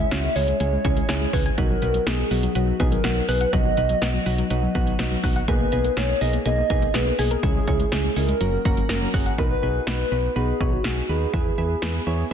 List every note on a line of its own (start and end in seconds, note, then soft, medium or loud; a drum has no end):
0.00 0.37 E5 loud
0.11 0.29 C#2 loud
0.11 0.30 G#3 medium
0.11 0.30 C#4 medium
0.11 0.20 C#4 medium
0.11 0.30 E4 medium
0.11 0.30 F#4 medium
0.11 snare loud
0.11 closed hi-hat medium
0.24 0.32 G#3 medium
0.35 0.53 C#2 loud
0.35 0.54 G#3 medium
0.35 0.45 G#3 medium
0.35 0.54 C#4 medium
0.35 0.54 E4 medium
0.35 0.54 G#4 medium
0.35 1.32 C#5 loud
0.35 open hi-hat medium
0.48 0.57 G#3 medium
0.48 closed hi-hat soft
0.60 0.77 C#2 loud
0.60 0.79 G#3 medium
0.60 0.69 G#3 medium
0.60 0.79 C#4 medium
0.60 0.79 E4 medium
0.60 0.79 G#4 medium
0.60 closed hi-hat medium
0.73 0.81 G#3 medium
0.84 1.02 C#2 loud
0.84 1.03 G#3 medium
0.84 1.03 C#4 medium
0.84 0.93 C#4 medium
0.84 1.03 E4 medium
0.84 1.03 G#4 loud
0.84 kick loud
0.84 closed hi-hat medium
0.97 1.06 G#3 medium
0.97 closed hi-hat medium
1.09 1.26 C#2 loud
1.09 1.27 G#3 loud
1.09 1.27 C#4 loud
1.09 1.18 C#4 medium
1.09 1.27 E4 loud
1.09 1.27 G#4 loud
1.09 snare loud
1.09 closed hi-hat medium
1.21 1.30 G#3 medium
1.33 1.50 C#2 loud
1.33 1.52 G#3 medium
1.33 1.52 C#4 medium
1.33 1.52 E4 medium
1.33 1.52 G#4 medium
1.33 1.44 B4 medium
1.33 1.42 G#6 loud
1.33 kick medium
1.33 open hi-hat medium
1.46 1.54 G#5 medium
1.46 closed hi-hat medium
1.57 1.75 B1 loud
1.57 1.76 F#3 medium
1.57 1.66 F#3 medium
1.57 1.76 B3 medium
1.57 1.76 D#4 medium
1.57 1.76 F#4 loud
1.57 2.08 A#4 loud
1.57 kick loud
1.57 closed hi-hat medium
1.70 1.79 F#3 medium
1.82 1.99 B1 medium
1.82 2.01 F#3 medium
1.82 2.01 B3 medium
1.82 1.91 B3 medium
1.82 2.01 D#4 medium
1.82 2.01 F#4 medium
1.82 closed hi-hat medium
1.94 2.03 F#3 medium
1.94 closed hi-hat medium
2.06 2.24 B1 medium
2.06 2.25 F#3 medium
2.06 2.25 B3 medium
2.06 2.15 B3 medium
2.06 2.25 D#4 medium
2.06 2.54 G#4 medium
2.06 2.25 G#4 medium
2.06 snare loud
2.06 closed hi-hat medium
2.19 2.27 F#3 medium
2.31 2.48 B1 loud
2.31 2.49 F#3 medium
2.31 2.40 F#3 medium
2.31 2.49 B3 medium
2.31 2.49 D#4 medium
2.31 2.49 F#4 medium
2.31 open hi-hat medium
2.43 2.52 F#3 medium
2.43 closed hi-hat soft
2.55 2.72 B1 loud
2.55 2.74 F#3 medium
2.55 2.64 F#3 medium
2.55 2.74 B3 medium
2.55 2.74 D#4 medium
2.55 2.93 F#4 medium
2.55 2.74 F#4 medium
2.55 closed hi-hat medium
2.68 2.76 F#3 medium
2.80 2.97 B1 loud
2.80 2.98 F#3 loud
2.80 2.98 B3 medium
2.80 2.88 B3 medium
2.80 2.98 D#4 medium
2.80 2.98 G#4 loud
2.80 kick medium
2.80 closed hi-hat medium
2.92 3.01 F#3 medium
2.92 3.28 A#4 loud
2.92 closed hi-hat medium
3.04 3.21 B1 loud
3.04 3.23 F#3 medium
3.04 3.13 B3 medium
3.04 3.23 B3 medium
3.04 3.23 D#4 medium
3.04 3.23 F#4 loud
3.04 snare loud
3.04 closed hi-hat medium
3.16 3.25 F#3 medium
3.28 3.46 B1 medium
3.28 3.47 F#3 medium
3.28 3.47 B3 medium
3.28 3.47 D#4 medium
3.28 3.47 G#4 medium
3.28 3.51 B4 medium
3.28 3.37 F#6 medium
3.28 open hi-hat medium
3.41 3.49 F#5 medium
3.41 closed hi-hat medium
3.53 3.70 B1 loud
3.53 3.71 F#3 loud
3.53 3.62 F#3 medium
3.53 3.71 B3 medium
3.53 3.71 D#4 medium
3.53 3.71 F#4 loud
3.53 5.20 D#5 loud
3.53 kick loud
3.53 closed hi-hat medium
3.65 3.74 F#3 medium
3.77 3.94 B1 loud
3.77 3.96 F#3 medium
3.77 3.96 B3 medium
3.77 3.86 B3 medium
3.77 3.96 D#4 medium
3.77 3.96 F#4 medium
3.77 closed hi-hat medium
3.89 3.98 F#3 medium
3.89 closed hi-hat medium
4.02 4.19 B1 loud
4.02 4.20 F#3 medium
4.02 4.20 B3 medium
4.02 4.10 B3 medium
4.02 4.20 D#4 medium
4.02 4.20 F#4 medium
4.02 snare loud
4.02 closed hi-hat medium
4.14 4.23 F#3 medium
4.26 4.43 B1 loud
4.26 4.45 F#3 medium
4.26 4.35 F#3 medium
4.26 4.45 B3 medium
4.26 4.45 D#4 medium
4.26 4.45 F#4 loud
4.26 open hi-hat medium
4.38 4.47 F#3 medium
4.38 closed hi-hat soft
4.50 4.68 B1 loud
4.50 4.69 F#3 medium
4.50 4.59 F#3 medium
4.50 4.69 B3 medium
4.50 4.69 D#4 medium
4.50 4.69 F#4 loud
4.50 closed hi-hat medium
4.63 4.71 F#3 medium
4.75 4.92 B1 medium
4.75 4.93 F#3 loud
4.75 4.93 B3 loud
4.75 4.84 B3 medium
4.75 4.93 D#4 loud
4.75 4.93 F#4 loud
4.75 kick medium
4.75 closed hi-hat medium
4.87 4.96 F#3 medium
4.87 closed hi-hat medium
4.99 5.16 B1 loud
4.99 5.18 F#3 loud
4.99 5.08 B3 medium
4.99 5.18 B3 loud
4.99 5.18 D#4 loud
4.99 5.18 F#4 loud
4.99 snare loud
4.99 closed hi-hat medium
5.11 5.20 F#3 medium
5.24 5.41 B1 medium
5.24 5.42 F#3 medium
5.24 5.42 B3 medium
5.24 5.42 D#4 medium
5.24 5.42 F#4 loud
5.24 5.32 F#6 medium
5.24 kick medium
5.24 open hi-hat medium
5.36 5.44 F#5 medium
5.36 closed hi-hat medium
5.48 5.65 B1 loud
5.48 5.66 A#3 loud
5.48 5.57 A#3 medium
5.48 5.66 B3 medium
5.48 5.66 D#4 medium
5.48 5.66 G#4 loud
5.48 5.99 B4 loud
5.48 kick loud
5.48 closed hi-hat medium
5.60 5.69 A#3 medium
5.72 5.90 B1 medium
5.72 5.91 A#3 medium
5.72 5.91 B3 medium
5.72 5.81 B3 medium
5.72 5.91 D#4 medium
5.72 5.91 G#4 medium
5.72 closed hi-hat medium
5.84 5.93 A#3 medium
5.84 closed hi-hat medium
5.97 6.14 B1 loud
5.97 6.15 A#3 medium
5.97 6.15 B3 medium
5.97 6.05 B3 medium
5.97 6.15 D#4 medium
5.97 6.15 G#4 medium
5.97 6.21 C#5 loud
5.97 snare loud
5.97 closed hi-hat medium
6.09 6.18 A#3 medium
6.21 6.38 B1 loud
6.21 6.40 A#3 medium
6.21 6.30 A#3 medium
6.21 6.40 B3 medium
6.21 6.40 D#4 medium
6.21 6.40 G#4 medium
6.21 6.32 D#5 loud
6.21 open hi-hat medium
6.33 6.42 A#3 medium
6.33 closed hi-hat medium
6.46 6.63 B1 loud
6.46 6.64 A#3 medium
6.46 6.54 A#3 medium
6.46 6.64 B3 medium
6.46 6.64 D#4 medium
6.46 6.64 G#4 medium
6.46 6.96 D#5 loud
6.46 closed hi-hat medium
6.58 6.66 A#3 medium
6.70 6.87 B1 loud
6.70 6.88 A#3 loud
6.70 6.88 B3 medium
6.70 6.79 B3 medium
6.70 6.88 D#4 medium
6.70 6.88 G#4 loud
6.70 kick loud
6.70 closed hi-hat medium
6.82 6.91 A#3 medium
6.82 closed hi-hat medium
6.94 7.12 B1 loud
6.94 7.13 A#3 medium
6.94 7.13 B3 medium
6.94 7.03 B3 medium
6.94 7.13 D#4 medium
6.94 7.13 G#4 loud
6.94 7.20 B4 loud
6.94 snare loud
6.94 closed hi-hat medium
7.07 7.15 A#3 medium
7.19 7.36 B1 medium
7.19 7.37 A#3 medium
7.19 7.37 B3 medium
7.19 7.37 D#4 medium
7.19 7.37 G#4 medium
7.19 8.16 G#4 loud
7.19 7.27 G#5 medium
7.19 open hi-hat medium
7.31 7.40 A#4 medium
7.31 closed hi-hat medium
7.43 7.60 C#2 loud
7.43 7.62 G#3 medium
7.43 7.52 G#3 medium
7.43 7.62 C#4 medium
7.43 7.62 E4 medium
7.43 7.62 G#4 loud
7.43 kick loud
7.43 closed hi-hat medium
7.55 7.64 G#3 medium
7.67 7.85 C#2 medium
7.67 7.86 G#3 medium
7.67 7.86 C#4 medium
7.67 7.76 C#4 medium
7.67 7.86 E4 medium
7.67 7.86 G#4 medium
7.67 kick medium
7.67 closed hi-hat medium
7.80 7.88 G#3 medium
7.80 closed hi-hat medium
7.92 8.09 C#2 loud
7.92 8.10 G#3 medium
7.92 8.10 C#4 medium
7.92 8.01 C#4 medium
7.92 8.10 E4 medium
7.92 8.10 G#4 loud
7.92 snare loud
7.92 closed hi-hat medium
8.04 8.13 G#3 medium
8.16 8.33 C#2 loud
8.16 8.25 G#3 medium
8.16 8.35 G#3 medium
8.16 8.35 C#4 medium
8.16 8.35 E4 medium
8.16 8.35 G#4 medium
8.16 9.10 A#4 medium
8.16 open hi-hat medium
8.29 8.37 G#3 medium
8.29 closed hi-hat soft
8.41 8.58 F#1 loud
8.41 8.49 F#3 medium
8.41 8.59 A#3 medium
8.41 8.59 C#4 medium
8.41 8.59 F#4 medium
8.41 8.59 A#4 medium
8.41 closed hi-hat medium
8.53 8.61 F#3 medium
8.65 8.82 F#1 medium
8.65 8.74 A#3 medium
8.65 8.84 A#3 medium
8.65 8.84 C#4 medium
8.65 8.84 F#4 medium
8.65 8.84 A#4 loud
8.65 kick loud
8.65 closed hi-hat medium
8.77 8.86 F#3 medium
8.77 closed hi-hat medium
8.89 9.07 F#1 loud
8.89 8.98 A#3 medium
8.89 9.08 A#3 loud
8.89 9.08 C#4 loud
8.89 9.08 F#4 loud
8.89 9.08 A#4 loud
8.89 snare loud
8.89 closed hi-hat medium
9.02 9.10 F#3 medium
9.14 9.31 F#1 loud
9.14 9.32 A#3 medium
9.14 9.32 C#4 medium
9.14 9.32 F#4 medium
9.14 9.32 G#4 loud
9.14 9.22 F#6 medium
9.14 kick medium
9.14 open hi-hat medium
9.26 9.35 F#5 medium
9.26 closed hi-hat medium
9.38 9.55 B1 loud
9.38 9.57 B3 medium
9.38 9.57 D#4 medium
9.38 9.57 F#4 medium
9.38 9.44 A#4 loud
9.38 9.57 B4 loud
9.38 kick loud
9.51 9.85 B4 loud
9.63 9.80 B1 medium
9.63 9.81 B3 medium
9.63 9.81 D#4 medium
9.63 9.81 F#4 medium
9.63 9.81 G#4 medium
9.87 10.04 B1 loud
9.87 10.06 B3 medium
9.87 10.06 D#4 medium
9.87 10.06 F#4 medium
9.87 10.06 B4 medium
9.87 snare loud
10.12 10.29 B1 loud
10.12 10.30 B3 medium
10.12 10.30 D#4 medium
10.12 10.30 F#4 medium
10.12 10.30 B4 medium
10.36 10.53 B1 loud
10.36 10.54 B3 medium
10.36 10.54 D#4 medium
10.36 10.54 F#4 medium
10.36 10.70 G#4 loud
10.36 10.54 B4 loud
10.61 10.78 B1 loud
10.61 10.79 B3 medium
10.61 10.79 D#4 medium
10.61 10.79 F#4 medium
10.61 10.79 C#5 medium
10.61 kick medium
10.73 11.11 F#4 medium
10.84 11.02 B1 loud
10.84 11.03 B3 medium
10.84 11.03 D#4 medium
10.84 11.03 F#4 medium
10.84 11.03 G#4 medium
10.84 snare loud
11.09 11.26 D#2 medium
11.09 11.28 B3 medium
11.09 11.28 D#4 medium
11.09 11.28 F#4 medium
11.09 12.33 G#4 medium
11.09 11.28 B4 medium
11.34 11.51 E2 loud
11.34 11.52 B3 medium
11.34 11.52 E4 medium
11.34 11.52 G#4 medium
11.34 11.52 B4 loud
11.34 kick loud
11.58 11.75 E2 loud
11.58 11.76 B3 medium
11.58 11.76 E4 medium
11.58 11.76 G#4 medium
11.58 11.76 B4 medium
11.82 11.99 E2 loud
11.82 12.01 B3 medium
11.82 12.01 E4 medium
11.82 12.01 G#4 medium
11.82 12.01 B4 loud
11.82 snare loud
12.07 12.24 E2 loud
12.07 12.25 B3 medium
12.07 12.25 E4 medium
12.07 12.25 G#4 medium
12.07 12.25 C#5 loud